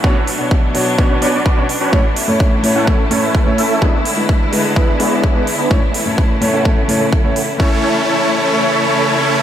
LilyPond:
<<
  \new Staff \with { instrumentName = "Supersaw synth" } { \time 4/4 \key a \major \tempo 4 = 127 <cis' d' fis' b' cis''>16 r4. r16 <cis' d' fis' b' cis''>16 r16 <cis' d' fis' b' d''>8 <cis' d' fis' b' d''>16 r8 <cis' d' fis' b' cis''>16 | r4. r16 <a cis' e' a' fis''>16 r8 <a cis' e' a' cis''>16 <a cis' e' a' b'>8 r16 <a cis' e' a' e''>8 | <b e' gis' b'>16 r4. r16 <b d' e' gis' b'>16 r16 <b d' e' gis' cis''>8 <b d' e' gis' cis''>16 r8 <b d' e' gis' b'>16 | r4. r16 <a cis' e' a' fis''>16 r8. <a cis' e' a' e''>8 <a cis' e' a' fis''>16 r8 |
<a cis' e' a' cis''>1 | }
  \new Staff \with { instrumentName = "Grand piano" } { \time 4/4 \key a \major <b, b d' fis' cis''>16 r8 <b, b d' fis' cis''>8. <b, b d' fis' cis''>8 <b, b d' fis' cis''>16 r16 <b, b d' fis' cis''>16 r8 <b, b d' fis' cis''>16 r8 | <a, a cis' e' cis''>16 r8 <a, a cis' e' cis''>8. <a, a cis' e' cis''>8 <a, a cis' e' cis''>16 r16 <a, a cis' e' cis''>16 r8 <a, a cis' e' cis''>16 r8 | <gis d' e' b'>16 r8 <gis d' e' b'>8. <gis d' e' b'>8 <gis d' e' b'>16 r16 <gis d' e' b'>16 r8 <gis d' e' b'>16 r8 | <a, a cis' e' cis''>16 r8 <a, a cis' e' cis''>8. <a, a cis' e' cis''>8 <a, a cis' e' cis''>16 r16 <a, a cis' e' cis''>16 r8 <a, a cis' e' cis''>16 r8 |
<a cis' e' cis''>1 | }
  \new Staff \with { instrumentName = "String section" } { \clef bass \time 4/4 \key a \major << { d'1 | e'1~ | e'1~ | e'1 |
<cis e a e'>1 | } \\ { <fis b>1 | <e a>1 | <d gis b>1 | <cis e a>1 |
r1 | } >> }
  \new DrumStaff \with { instrumentName = "Drums" } \drummode { \time 4/4 bd8 hho8 bd8 hho8 bd8 hho8 bd8 hho8 | bd8 hho8 bd8 hho8 bd8 hho8 bd8 hho8 | bd8 hho8 bd8 hho8 bd8 hho8 bd8 hho8 | bd8 hho8 bd8 hho8 bd8 hho8 bd8 hho8 |
bd4 r4 r4 r4 | }
>>